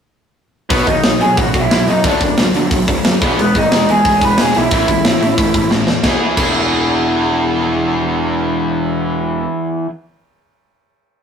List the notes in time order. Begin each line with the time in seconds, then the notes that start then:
0.70 B1 B2 F#3 B3 B4, kick, open hi-hat
0.87 D#2 B2 F#3 D#4 D#5, kick, open hi-hat
1.03 B1 B2 F#3, snare, open hi-hat
1.20 B2 F#3 G#5, open hi-hat
1.24 G#4
1.37 A1 B2 F#3 F#4 F#5, kick, open hi-hat
1.54 B1 B2 F#3, kick, open hi-hat
1.62 E4 E5
1.69 B1 B2 F#3, snare, open hi-hat
1.87 F#2 B2 F#3 D#5, open hi-hat
1.91 D#4
2.04 D2 D3 F#3 A3 D5, kick, open hi-hat
2.10 D4
2.21 F#2 D3 F#3, kick, open hi-hat
2.37 D2 D3 F#3, snare, open hi-hat
2.54 D3 F#3, open hi-hat
2.71 B1 D3 F#3, kick, open hi-hat
2.88 D2 D3 F#3, kick, open hi-hat
3.05 F#2 D3 F#3, snare, open hi-hat
3.21 E1 E3 G#3 B3, kick, open hi-hat
3.39 E1 E3 G#3 B3 B4, open hi-hat
3.55 G#1 E3 G#3 D#4 D#5, kick, open hi-hat
3.72 E1 E3 G#3, snare, open hi-hat
3.89 E2 E3 G#3 G#4 G#5, open hi-hat
4.05 C#2 E3 G#3, kick, open hi-hat
4.21 E1 E3 G#3 B4 B5, kick, open hi-hat
4.38 E1 E3 G#3 G#4 G#5, snare, open hi-hat
4.55 B1 E3 G#3 E4 E5, open hi-hat
4.71 A1 A2 E3 A3 E4 E5, kick, open hi-hat
4.88 C#2 A2 E3, kick, open hi-hat
5.04 A1 A2 E3, snare, open hi-hat
5.21 A2 E3, open hi-hat
5.38 F#1 A2 E3, kick, open hi-hat
5.54 A1 A2 E3, kick, open hi-hat
5.70 A1 A2 E3, snare
5.87 E2 A2 E3, snare
6.03 E1 E3 B3 E4, kick, snare
6.07 G#4
6.36 E1 E3 B3 E4 G#4, kick, crash